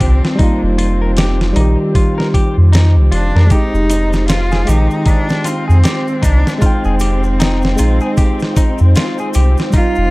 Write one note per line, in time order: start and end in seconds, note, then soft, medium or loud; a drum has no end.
0.00 0.21 C2 medium
0.00 0.35 D#3 medium
0.00 0.34 G3 medium
0.00 3.50 C4 medium
0.00 0.42 C4 loud
0.00 0.37 F4 medium
0.00 0.22 G4 medium
0.00 kick loud
0.00 open hi-hat medium
0.25 snare medium
0.35 1.50 G3 loud
0.35 0.61 D#4 loud
0.35 1.52 D#4 medium
0.39 1.18 A#3 medium
0.39 kick loud
0.39 open hi-hat medium
0.43 1.54 F4 loud
0.63 1.53 F1 medium
0.78 1.00 F4 loud
0.78 open hi-hat medium
1.02 1.10 A#4 medium
1.17 1.39 G4 medium
1.17 snare loud
1.17 open hi-hat medium
1.41 snare medium
1.53 1.76 A#1 medium
1.53 3.45 G3 loud
1.53 1.78 D#4 loud
1.53 open hi-hat medium
1.57 3.47 D#3 medium
1.57 3.49 G4 loud
1.95 2.17 F4 medium
1.95 kick loud
1.95 open hi-hat medium
2.18 2.27 A#4 medium
2.18 snare soft
2.34 2.56 G4 medium
2.34 kick medium
2.34 open hi-hat medium
2.58 2.97 F2 loud
2.73 2.95 D#4 loud
2.73 snare loud
2.73 open hi-hat medium
2.96 3.10 C2 loud
3.12 3.32 F1 medium
3.12 3.52 D4 loud
3.12 3.33 F4 medium
3.12 open hi-hat medium
3.35 3.49 F2 medium
3.35 3.44 A#4 medium
3.35 snare soft
3.47 4.62 G#3 medium
3.47 4.28 D#4 loud
3.47 4.64 D#4 medium
3.47 kick loud
3.47 open hi-hat medium
3.47 maracas medium
3.51 10.11 C4 medium
3.51 10.11 F4 medium
3.51 3.73 G4 medium
3.51 4.66 G4 medium
3.74 4.65 F1 medium
3.74 maracas soft
3.90 4.12 D#4 loud
3.90 open hi-hat medium
3.90 maracas loud
4.13 snare soft
4.13 maracas soft
4.28 4.70 F4 loud
4.28 4.51 F4 loud
4.28 snare loud
4.28 open hi-hat medium
4.28 maracas soft
4.51 4.61 G#4 medium
4.51 snare medium
4.51 maracas soft
4.65 4.88 A#1 loud
4.65 6.57 G#3 medium
4.65 5.09 D#4 loud
4.65 4.89 G4 medium
4.65 open hi-hat medium
4.65 maracas loud
4.69 6.59 D#3 medium
4.69 6.61 G5 medium
4.91 maracas soft
5.06 5.49 D4 loud
5.06 5.28 D#4 loud
5.06 kick loud
5.06 open hi-hat medium
5.06 maracas medium
5.29 snare soft
5.29 maracas soft
5.44 6.26 C4 loud
5.44 5.67 F4 loud
5.44 open hi-hat medium
5.44 maracas medium
5.68 5.83 F2 loud
5.68 5.77 G#4 medium
5.68 maracas soft
5.84 6.06 G4 medium
5.84 snare loud
5.84 open hi-hat medium
5.84 maracas medium
6.08 maracas soft
6.22 6.44 C2 medium
6.22 6.57 D4 loud
6.22 6.45 D#4 loud
6.22 kick loud
6.22 open hi-hat medium
6.22 maracas medium
6.47 snare soft
6.47 maracas soft
6.58 7.73 G#3 loud
6.58 6.64 D4 medium
6.58 6.84 F4 loud
6.58 maracas medium
6.62 9.35 C4 loud
6.62 7.75 D#4 medium
6.62 kick loud
6.62 open hi-hat medium
6.66 7.77 G5 loud
6.84 7.76 F1 loud
6.84 6.95 G#4 medium
6.84 maracas soft
7.00 7.23 G4 medium
7.00 open hi-hat medium
7.00 maracas medium
7.23 maracas soft
7.40 7.62 D#4 loud
7.40 snare loud
7.40 open hi-hat medium
7.40 maracas medium
7.62 snare medium
7.62 maracas soft
7.76 8.00 A#1 medium
7.76 9.69 G#3 loud
7.76 9.71 D#4 medium
7.76 8.01 F4 loud
7.76 open hi-hat medium
7.76 maracas medium
8.00 8.11 G#4 medium
8.00 maracas soft
8.17 8.40 G4 medium
8.17 kick loud
8.17 open hi-hat loud
8.17 maracas medium
8.40 snare soft
8.40 maracas soft
8.56 8.79 D#4 loud
8.56 kick loud
8.56 open hi-hat medium
8.56 maracas medium
8.78 8.95 F2 loud
8.78 maracas soft
8.95 9.18 F4 loud
8.95 snare loud
8.95 open hi-hat medium
8.95 maracas medium
9.18 9.29 G#4 medium
9.18 maracas soft
9.34 9.56 C2 loud
9.34 9.57 G4 medium
9.34 open hi-hat medium
9.34 maracas medium
9.57 snare soft
9.57 maracas soft
9.70 10.11 G3 medium
9.70 9.96 D#4 loud
9.70 kick loud
9.70 open hi-hat medium
9.70 maracas medium
9.74 10.11 D#4 medium
9.74 10.11 F4 loud
9.95 10.11 F1 loud
9.95 maracas soft